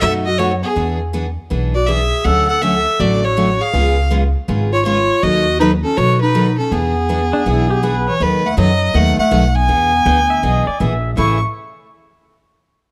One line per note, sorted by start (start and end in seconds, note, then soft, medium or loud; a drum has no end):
0.01 0.62 F#2 medium
0.01 0.24 B2 medium
0.01 0.24 F#3 medium
0.01 0.24 A3 medium
0.01 0.24 D#4 medium
0.01 0.24 F#4 medium
0.01 0.13 A4 medium
0.01 0.12 E5 loud
0.25 0.39 F#4 medium
0.25 0.40 D#5 medium
0.38 0.51 B2 medium
0.38 0.51 F#3 medium
0.38 0.51 A3 medium
0.38 0.51 D#4 medium
0.38 0.52 F#4 medium
0.38 0.51 F#4 medium
0.38 0.51 C#5 medium
0.63 0.98 B3 medium
0.63 0.98 G#4 medium
0.76 1.36 E2 medium
0.76 0.98 E3 medium
0.76 0.98 B3 medium
0.76 0.99 D4 medium
0.76 0.99 G#4 medium
1.13 1.25 E3 medium
1.13 1.25 B3 medium
1.13 1.26 D4 medium
1.13 1.26 G#4 medium
1.50 2.10 B1 medium
1.50 1.73 E3 medium
1.50 1.73 B3 medium
1.50 1.73 D4 medium
1.50 1.73 G#4 medium
1.74 1.90 F#4 medium
1.74 1.88 D5 medium
1.87 2.00 E3 medium
1.87 2.00 B3 medium
1.87 2.00 D4 medium
1.87 2.27 G#4 medium
1.87 2.00 G#4 medium
1.87 2.26 E5 medium
2.24 2.84 D2 medium
2.24 2.47 D3 medium
2.24 2.47 F#3 medium
2.24 2.47 A3 medium
2.24 2.47 C#4 medium
2.24 2.47 F#4 medium
2.24 2.49 A4 medium
2.24 2.48 F#5 loud
2.48 2.63 A4 medium
2.48 2.63 F#5 medium
2.62 2.74 D3 medium
2.62 2.74 F#3 medium
2.62 2.74 A3 medium
2.62 2.74 C#4 medium
2.62 2.74 F#4 medium
2.62 3.02 A4 medium
2.62 3.01 E5 loud
3.00 3.59 A1 medium
3.00 3.22 D3 medium
3.00 3.22 F#3 medium
3.00 3.22 A3 medium
3.00 3.22 C#4 medium
3.00 3.24 F#4 medium
3.00 3.22 F#4 medium
3.00 3.26 D5 medium
3.24 3.62 F#4 medium
3.24 3.63 C#5 medium
3.37 3.48 D3 medium
3.37 3.48 F#3 medium
3.37 3.49 A3 medium
3.37 3.49 C#4 medium
3.37 3.49 F#4 medium
3.61 4.11 G#4 medium
3.61 4.11 F5 medium
3.73 4.33 C#2 medium
3.73 3.96 C#3 medium
3.73 3.96 G#3 medium
3.73 3.96 B3 medium
3.73 3.96 F4 medium
3.73 3.96 G#4 medium
4.10 4.22 C#3 medium
4.10 4.23 G#3 medium
4.10 4.23 B3 medium
4.10 4.23 F4 medium
4.10 4.23 G#4 medium
4.48 5.08 G#1 medium
4.48 4.70 C#3 medium
4.48 4.70 G#3 medium
4.48 4.70 B3 medium
4.48 4.70 F4 medium
4.48 4.71 G#4 medium
4.72 4.84 F4 medium
4.72 4.85 C#5 medium
4.85 4.97 C#3 medium
4.85 4.97 G#3 medium
4.85 4.97 B3 medium
4.85 5.24 F4 medium
4.85 4.97 F4 medium
4.85 4.97 G#4 medium
4.85 5.24 C#5 medium
5.23 5.82 D#2 medium
5.23 5.45 D#3 medium
5.23 5.45 F#3 medium
5.23 5.45 B3 medium
5.23 5.45 D#4 medium
5.23 5.60 F#4 loud
5.23 5.45 A4 medium
5.23 5.59 D#5 loud
5.60 5.72 D#3 medium
5.60 5.72 F#3 medium
5.60 5.72 B3 medium
5.60 5.71 D#4 medium
5.60 5.72 D#4 medium
5.60 5.72 A4 medium
5.60 5.71 B4 loud
5.83 5.99 C#4 medium
5.83 5.99 A4 medium
5.97 6.57 B2 medium
5.97 6.19 D#3 medium
5.97 6.19 F#3 medium
5.97 6.19 B3 medium
5.97 6.20 D#4 medium
5.97 6.21 F#4 medium
5.97 6.20 A4 medium
5.97 6.20 C#5 loud
6.21 6.56 D#4 medium
6.21 6.55 B4 medium
6.34 6.46 D#3 medium
6.34 6.46 F#3 medium
6.34 6.46 B3 medium
6.34 6.46 D#4 medium
6.34 6.46 A4 medium
6.58 6.73 C#4 medium
6.58 6.73 A4 medium
6.71 7.31 E2 medium
6.71 6.94 E3 medium
6.71 8.07 B3 medium
6.71 6.94 B3 medium
6.71 6.94 D4 medium
6.71 8.07 G#4 medium
6.71 6.94 G#4 medium
7.09 7.20 E3 medium
7.09 7.21 B3 medium
7.09 7.21 D4 medium
7.09 7.21 G#4 medium
7.33 7.46 D4 medium
7.46 8.05 B1 medium
7.46 7.68 E3 medium
7.46 7.68 B3 medium
7.46 7.68 D4 medium
7.46 7.69 E4 medium
7.46 7.68 G#4 medium
7.70 7.83 G4 medium
7.83 7.94 E3 medium
7.83 7.95 B3 medium
7.83 7.95 D4 medium
7.83 7.95 G#4 medium
7.83 8.13 B4 loud
8.08 8.23 E3 medium
8.08 8.24 C#5 medium
8.20 8.56 D#2 medium
8.20 8.42 D#3 medium
8.20 8.46 D#3 medium
8.20 8.42 F#3 soft
8.20 8.42 B3 medium
8.20 8.43 D#4 medium
8.20 8.43 A4 medium
8.20 8.48 B4 medium
8.45 8.57 A3 medium
8.45 8.58 F#5 medium
8.57 8.93 F#2 medium
8.57 8.69 D#3 medium
8.57 8.96 F#3 medium
8.57 8.69 F#3 medium
8.57 8.69 B3 medium
8.57 8.69 D#4 medium
8.57 8.69 A4 medium
8.57 8.97 D#5 medium
8.94 9.17 D#2 loud
8.94 9.16 D#3 medium
8.94 9.16 F#3 medium
8.94 9.19 A3 medium
8.94 9.16 B3 medium
8.94 9.17 D#4 medium
8.94 9.17 A4 medium
8.94 9.18 F#5 loud
9.18 9.47 A3 medium
9.18 9.47 F#5 loud
9.18 muted upright bass stroke soft
9.31 9.68 B1 medium
9.31 9.43 D#3 medium
9.31 9.43 F#3 medium
9.31 9.43 B3 medium
9.31 9.43 D#4 medium
9.31 9.43 A4 medium
9.47 9.57 A3 medium
9.47 9.57 F#5 medium
9.55 10.80 B3 medium
9.55 10.80 G#5 loud
9.68 10.05 E2 medium
9.68 9.90 E3 medium
9.68 9.91 B3 medium
9.68 9.91 D4 medium
9.68 9.91 G#4 medium
10.06 10.42 D2 medium
10.06 10.17 E3 medium
10.06 10.18 B3 medium
10.06 10.18 D4 medium
10.06 10.18 G#4 medium
10.06 10.29 G5 medium
10.30 10.43 E5 medium
10.43 10.65 B1 medium
10.43 10.65 E3 medium
10.43 10.65 B3 medium
10.43 10.65 D4 medium
10.43 10.65 G#4 medium
10.43 10.67 D#5 medium
10.67 10.80 D5 medium
10.67 muted upright bass stroke soft
10.80 11.16 A#1 loud
10.80 10.92 E3 medium
10.80 10.92 B3 medium
10.80 10.92 D4 medium
10.80 10.92 G#4 medium
10.80 11.10 E5 medium
11.17 11.40 A1 medium
11.17 11.36 A2 medium
11.17 11.37 C#3 medium
11.17 11.37 E3 medium
11.17 11.37 A3 medium
11.17 11.37 C#4 medium
11.17 11.40 E4 medium
11.17 11.37 G#4 medium
11.17 11.40 E5 medium
11.17 11.39 C#6 medium